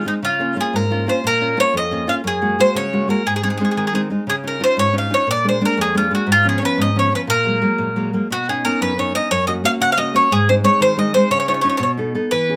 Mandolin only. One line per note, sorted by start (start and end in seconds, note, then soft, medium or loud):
0.08 0.13 D#4 medium
0.25 0.56 F4 medium
0.61 0.74 G#4 medium
0.76 1.06 A#4 medium
1.09 1.24 C5 medium
1.27 1.60 A#4 loud
1.60 1.74 C#5 loud
1.77 2.07 D#5 loud
2.09 2.14 F5 medium
2.27 2.61 G#4 medium
2.60 2.74 C5 medium
2.76 3.10 C#5 loud
3.10 3.26 A#4 medium
3.27 3.33 G#4 medium
3.36 3.42 G#4 medium
3.44 3.49 G#4 medium
3.50 3.56 G#4 soft
3.58 3.63 G#4 medium
3.65 3.70 G#4 soft
3.71 3.76 G#4 soft
3.77 3.84 G#4 soft
3.87 3.93 G#4 medium
3.95 4.00 G#4 medium
4.30 4.35 G#4 medium
4.47 4.62 A#4 medium
4.64 4.79 C5 medium
4.79 4.94 C#5 loud
4.98 5.13 F5 medium
5.14 5.29 C#5 medium
5.31 5.45 D5 loud
5.49 5.62 C5 medium
5.65 5.78 A#4 medium
5.81 5.96 G#4 medium
5.98 6.11 F4 medium
6.15 6.30 F#4 medium
6.32 6.46 F4 loud
6.49 6.60 G#4 medium
6.58 6.62 C#5 medium
6.65 6.80 B4 medium
6.82 6.96 D#5 medium
6.99 7.13 C#5 medium
7.15 7.20 B4 medium
7.30 8.27 A#4 loud
8.32 8.49 F#4 medium
8.49 8.65 G#4 medium
8.65 8.80 A#4 medium
8.82 8.98 B4 medium
8.99 9.14 C#5 medium
9.15 9.31 D#5 medium
9.31 9.47 C#5 loud
9.47 9.52 D#5 medium
9.65 9.70 F5 loud
9.82 9.92 F#5 loud
9.92 9.98 F5 medium
9.98 10.15 D#5 medium
10.16 10.32 C#5 medium
10.32 10.48 G#4 medium
10.49 10.54 C5 medium
10.64 10.82 C#5 medium
10.82 10.98 C5 loud
10.99 11.14 D#5 medium
11.14 11.30 C5 loud
11.31 11.39 C#5 loud
11.40 11.47 C#5 medium
11.48 11.53 C#5 medium
11.54 11.60 C#5 soft
11.61 11.68 C#5 medium
11.69 11.76 C#5 medium
11.77 11.82 C#5 medium
11.83 11.90 C#5 medium
12.31 12.56 B4 medium